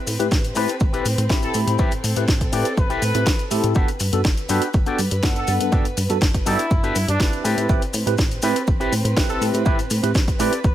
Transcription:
Already playing: C4 B4
0.06 A2, muted clean electric guitar stroke, open hi-hat, maracas
0.19 A2 C4 E4 G4 B4, closed hi-hat, maracas
0.31 A1, kick, snare, maracas
0.44 closed hi-hat, maracas
0.55 A2 C4 E4 G4 A4 B4, open hi-hat, maracas
0.68 closed hi-hat, maracas
0.80 A1, kick, maracas
0.93 C4 E4 G4 A4 B4, closed hi-hat, maracas
1.05 A2, open hi-hat, maracas
1.18 A2, muted clean electric guitar stroke, closed hi-hat, maracas
1.29 A1 C4 E4 G4 B5, muted clean electric guitar stroke, kick, snare, maracas
1.42 A4, muted clean electric guitar stroke, closed hi-hat, maracas
1.54 A2 A4, open hi-hat, maracas
1.67 A2, muted clean electric guitar stroke, closed hi-hat, maracas
1.78 A1 C4 E4 G4 A4 B4, kick, maracas
1.91 A2, closed hi-hat, maracas
2.03 A2, muted clean electric guitar stroke, open hi-hat, maracas
2.16 A2 C4 E4 G4 B4, closed hi-hat, maracas
2.28 A1, kick, snare, maracas
2.41 kick, closed hi-hat, maracas
2.52 A2 C4 E4 G4 A4 B4 D5, open hi-hat, maracas
2.65 closed hi-hat, maracas
2.77 A1 B4, kick, maracas
2.90 C4 E4 G4 A4 B4, closed hi-hat, maracas
3.02 A2, open hi-hat, maracas
3.14 A2 C4 E4 G4 B4, muted clean electric guitar stroke, closed hi-hat, maracas
3.26 A1, muted clean electric guitar stroke, kick, snare, maracas
3.39 muted clean electric guitar stroke, closed hi-hat, maracas
3.51 A2 C4 E4 G4 A4, open hi-hat, maracas
3.63 A2, muted clean electric guitar stroke, closed hi-hat, maracas
3.75 G1 B3 D4 F#4 G4 A4 B4, kick, maracas
3.88 closed hi-hat, maracas
4.00 G2, muted clean electric guitar stroke, open hi-hat, maracas
4.12 G2 B3 D4 F#4 A4, closed hi-hat, maracas
4.25 G1, kick, snare, maracas
4.37 closed hi-hat, maracas
4.49 G2 B3 D4 F#4 G4 A4 B4, open hi-hat, maracas
4.62 closed hi-hat, maracas
4.74 G1, kick, maracas
4.86 B3 D4 F#4 G4 A4 D5, closed hi-hat, maracas
4.99 G2, open hi-hat, maracas
5.11 G2, muted clean electric guitar stroke, closed hi-hat, maracas
5.23 G1 B3 D4 A4 F#5, muted clean electric guitar stroke, kick, snare, maracas
5.36 A4, muted clean electric guitar stroke, closed hi-hat, maracas
5.47 G2, open hi-hat, maracas
5.60 G2, muted clean electric guitar stroke, closed hi-hat, maracas
5.72 G1 B3 D4 F#4 G4 A4, kick, maracas
5.85 closed hi-hat, maracas
5.97 G2, muted clean electric guitar stroke, open hi-hat, maracas
6.09 G2 B3 D4 F#4 A4, closed hi-hat, maracas
6.21 G1, kick, snare, maracas
6.34 kick, closed hi-hat, maracas
6.46 G2 B3 D4 E4 F#4 G4 A4 D5, open hi-hat, maracas
6.59 closed hi-hat, maracas
6.71 G1, kick, maracas
6.83 B3 D4 F#4 G4 A4 B4, closed hi-hat, maracas
6.95 G2, open hi-hat, maracas
7.08 G2 D4, muted clean electric guitar stroke, closed hi-hat, maracas
7.19 G1 C4 E4 G4 B4, muted clean electric guitar stroke, kick, snare, maracas
7.32 muted clean electric guitar stroke, closed hi-hat, maracas
7.44 A2 C4 G4 A4 B4, open hi-hat, maracas
7.57 A2, closed hi-hat, maracas
7.69 A1 C4 E4 G4 B4, kick, maracas
7.82 closed hi-hat, maracas
7.93 A2, muted clean electric guitar stroke, open hi-hat, maracas
8.06 A2 C4 E4 G4 B4, closed hi-hat, maracas
8.18 A1, kick, snare, maracas
8.31 closed hi-hat, maracas
8.42 A2 C4 E4 G4 A4 B4, open hi-hat, maracas
8.56 closed hi-hat, maracas
8.67 A1, kick, maracas
8.80 C4 E4 G4 A4 B4, closed hi-hat, maracas
8.92 A2, open hi-hat, maracas
9.04 A2, muted clean electric guitar stroke, closed hi-hat, maracas
9.16 A1 C4 E4 G4 B4, muted clean electric guitar stroke, kick, snare, maracas
9.29 A4, muted clean electric guitar stroke, closed hi-hat, maracas
9.41 A2, open hi-hat, maracas
9.53 A2, muted clean electric guitar stroke, closed hi-hat, maracas
9.65 A1 C4 E4 G4 A4 B4, kick, maracas
9.79 A2, closed hi-hat, maracas
9.90 A2, muted clean electric guitar stroke, open hi-hat, maracas
10.03 A2 C4 E4 G4 B4, closed hi-hat, maracas
10.14 A1, kick, snare, maracas
10.28 kick, closed hi-hat, maracas
10.39 A2 C4 E4 G4 A4 B4 D5, open hi-hat, maracas
10.53 closed hi-hat, maracas
10.64 A1 B4, kick, maracas

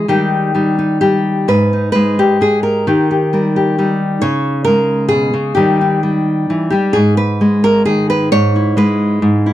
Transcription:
0.08 D#3 G3 D#4 G4
0.55 G3 D#4
0.79 D#4
1.01 G3 G4
1.48 G#2 B4
1.73 D#4
1.92 G#3 B4
2.19 G4
2.41 G#3 G#4
2.63 A#4
2.87 D#3 G4
3.11 G4
3.33 G3 A#4
3.56 G4
3.78 G3 D#4
4.21 C#3 C#5
4.65 G#3 A#4
5.09 B2 G#4
5.34 C#3
5.55 D#3 G3 D#4 G4
5.81 D#4
6.03 G3
6.50 E3
6.70 G3 G4
6.93 G#2 G#4
7.17 B4
7.41 G#3
7.64 A#4
7.85 D#3 G#4
8.10 B4
8.32 G#2 C#5
8.56 E4
8.77 G#3 B4
9.22 G#2
9.46 E4

